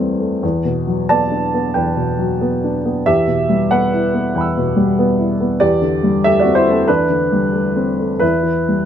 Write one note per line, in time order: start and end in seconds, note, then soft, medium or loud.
0.00 0.39 E2 soft
0.00 0.45 E3 soft
0.00 0.45 G3 soft
0.00 0.20 A3 soft
0.00 0.45 C4 soft
0.20 0.42 A3 soft
0.43 1.71 E2 medium
0.65 1.00 B2 soft
0.87 1.22 F#3 soft
1.09 1.45 B3 soft
1.09 1.71 D5 medium
1.09 1.75 A5 medium
1.32 1.66 D4 soft
1.54 1.89 B3 soft
1.74 3.03 E2 soft
1.74 3.03 B4 soft
1.74 3.06 G5 medium
1.96 2.32 B2 soft
2.19 2.54 F#3 soft
2.41 2.76 B3 soft
2.64 2.98 D4 soft
2.86 3.07 B3 soft
3.06 4.30 E2 medium
3.06 3.67 G4 medium
3.06 3.70 E5 medium
3.27 3.62 B2 soft
3.49 3.83 G3 soft
3.71 4.05 B3 soft
3.71 5.58 B4 medium
3.71 5.61 F#5 medium
3.93 4.26 E4 soft
4.14 4.47 B3 soft
4.34 5.58 E2 soft
4.34 5.58 G5 soft
4.34 5.59 B5 soft
4.41 5.61 E6 soft
4.57 4.90 B2 soft
4.76 5.10 G3 soft
4.99 5.32 B3 soft
5.19 5.53 E4 soft
5.41 5.61 B3 soft
5.60 6.84 E2 medium
5.60 6.21 G4 medium
5.60 6.25 D5 medium
5.82 6.16 D3 soft
6.03 6.38 G3 soft
6.24 6.59 A3 soft
6.24 6.40 G4 medium
6.24 6.41 E5 medium
6.40 6.56 F#4 medium
6.40 6.56 D5 medium
6.45 6.71 C4 soft
6.55 6.71 E4 medium
6.55 6.72 C5 medium
6.67 7.01 A3 soft
6.67 6.88 A4 medium
6.72 6.87 C4 medium
6.88 8.18 E2 soft
6.88 8.18 D4 medium
6.88 8.18 B4 medium
7.10 7.45 D3 soft
7.32 7.67 G3 soft
7.53 7.89 A3 soft
7.76 8.13 C4 soft
7.99 8.22 A3 soft
8.20 8.85 E2 soft
8.20 8.85 E4 medium
8.20 8.85 B4 medium
8.43 8.81 E3 soft
8.69 8.85 G3 soft